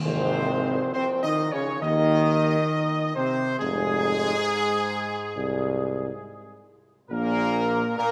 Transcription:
0.04 0.80 G#1 loud
0.04 0.90 C3 loud
0.04 0.91 C4 loud
0.04 0.90 C5 loud
0.04 tam-tam medium
0.94 1.08 C3 medium
0.94 1.22 C4 loud
0.94 1.07 C5 loud
1.23 1.51 D#3 loud
1.23 1.53 D#4 loud
1.23 1.51 D#5 loud
1.52 1.81 C#3 medium
1.52 1.67 C#4 loud
1.52 1.82 C#5 loud
1.82 2.56 D#2 loud
1.82 3.12 D#3 loud
1.82 3.12 D#4 medium
1.82 3.12 D#5 loud
3.15 3.57 C3 loud
3.15 3.58 C4 loud
3.15 3.60 C5 loud
3.59 4.34 F1 loud
3.59 6.65 G#2 loud
3.59 6.65 G#3 loud
3.59 6.64 G#4 loud
5.37 6.10 C2 loud
7.11 7.83 A#1 loud
7.11 7.93 A#2 loud
7.11 7.94 A#3 loud
7.11 7.93 A#4 loud
7.98 8.12 A#2 loud
7.98 8.11 A#3 loud
7.98 8.12 A#4 loud

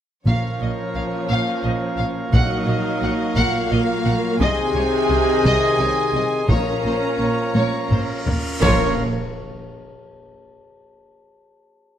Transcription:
0.25 0.34 A#1 soft
0.25 1.25 A#2 medium
0.25 0.34 A#2 soft
0.25 2.29 F3 medium
0.25 2.29 F3 soft
0.25 4.36 A#3 soft
0.25 2.29 C#4 medium
0.25 2.29 F4 soft
0.25 4.36 A#4 soft
0.25 2.29 C#5 soft
0.25 4.36 C#5 soft
0.25 4.36 F5 soft
0.25 0.59 F5 soft
0.25 taiko medium
0.61 0.69 A#1 soft
0.61 0.69 A#2 soft
0.61 0.69 D#5 soft
0.95 1.03 A#1 soft
0.95 1.04 A#2 soft
0.95 1.03 F5 soft
1.29 1.38 A#1 medium
1.29 1.38 A#2 soft
1.29 1.61 F5 medium
1.62 1.71 A#1 soft
1.62 1.72 A#2 soft
1.62 1.70 D#5 soft
1.97 2.06 A#1 soft
1.97 2.07 A#2 soft
1.97 2.05 F5 soft
2.32 2.40 A#1 medium
2.32 3.32 A#2 medium
2.32 2.42 A#2 medium
2.32 4.40 F#3 medium
2.32 3.36 F#3 medium
2.32 4.37 F#3 medium
2.32 3.34 D#4 medium
2.32 3.34 D#5 medium
2.32 2.66 F#5 medium
2.32 taiko medium
2.67 2.75 A#1 soft
2.67 2.77 A#2 soft
2.67 2.76 D#5 soft
3.02 3.10 A#1 soft
3.02 3.11 A#2 soft
3.02 3.11 F#5 soft
3.35 3.44 A#1 medium
3.35 3.45 A#2 medium
3.35 4.38 A#3 medium
3.35 4.41 F4 medium
3.35 4.39 F5 medium
3.35 3.69 F#5 medium
3.35 taiko medium
3.71 3.79 A#1 medium
3.71 3.79 A#2 medium
3.71 3.79 D#5 medium
4.05 4.13 A#1 medium
4.05 4.14 A#2 medium
4.05 4.13 F#5 medium
4.39 4.48 C2 medium
4.39 6.45 C3 medium
4.39 6.49 C3 loud
4.39 4.48 C3 medium
4.39 6.45 D#3 medium
4.39 6.49 D#4 medium
4.39 6.49 G#4 medium
4.39 6.45 G#4 loud
4.39 6.49 D#5 medium
4.39 6.45 D#5 medium
4.39 4.73 D#5 medium
4.39 6.45 G#5 medium
4.39 6.49 C6 medium
4.39 taiko medium
4.74 4.82 C2 medium
4.74 4.83 C3 medium
4.74 4.84 C#5 medium
5.09 5.18 C2 medium
5.09 5.17 C3 medium
5.09 5.17 D#5 soft
5.44 5.52 C2 medium
5.44 5.53 C3 medium
5.44 5.78 D#5 medium
5.44 taiko medium
5.78 5.86 C2 medium
5.78 5.87 C3 soft
5.78 5.88 C#5 medium
6.13 6.21 C2 soft
6.13 6.22 C3 soft
6.13 6.23 D#5 medium
6.47 6.57 A#1 medium
6.47 6.56 A#2 medium
6.47 7.51 A#2 medium
6.47 8.24 F3 medium
6.47 8.24 A#3 medium
6.47 8.23 C#4 medium
6.47 8.62 C#4 medium
6.47 8.61 F4 medium
6.47 8.26 A#4 medium
6.47 8.61 A#4 medium
6.47 6.82 C#5 medium
6.47 8.25 C#5 medium
6.47 8.60 F5 soft
6.47 8.23 A#5 medium
6.47 taiko medium
6.47 cymbal swell soft
6.84 6.92 A#1 soft
6.84 6.93 A#2 soft
6.84 6.94 C5 soft
7.19 7.27 A#1 soft
7.19 7.28 A#2 soft
7.19 7.28 C#5 soft
7.54 7.62 A#1 medium
7.54 7.63 A#2 medium
7.54 7.88 C#5 medium
7.54 taiko high medium
7.91 7.99 A#1 soft
7.91 7.99 A#2 soft
7.91 7.99 C5 soft
7.91 taiko low-mid medium
8.26 8.34 A#1 soft
8.26 8.35 A#2 soft
8.26 8.34 C#5 soft
8.26 taiko low medium
8.61 9.03 A#1 medium
8.61 8.96 A#2 medium
8.61 9.03 A#2 medium
8.61 8.94 F3 medium
8.61 8.94 A#3 medium
8.61 9.03 C#4 medium
8.61 9.03 F4 medium
8.61 9.02 A#4 medium
8.61 8.94 A#4 medium
8.61 9.03 A#4 medium
8.61 9.02 C#5 medium
8.61 8.95 C#5 medium
8.61 9.03 F5 medium
8.61 taiko loud
8.61 impact medium

